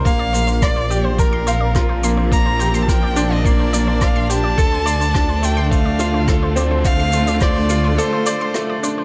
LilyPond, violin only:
\new Staff \with { instrumentName = "Violin" } { \time 4/4 \key bes \major \tempo 4 = 106 f''4 d''8. c''16 bes'4. r8 | bes''8.~ bes''32 a''32 g''8. ees''16 d''4 f''8 a''8~ | a''4. g''8 f''4. r8 | f''4 d''4 c''4. r8 | }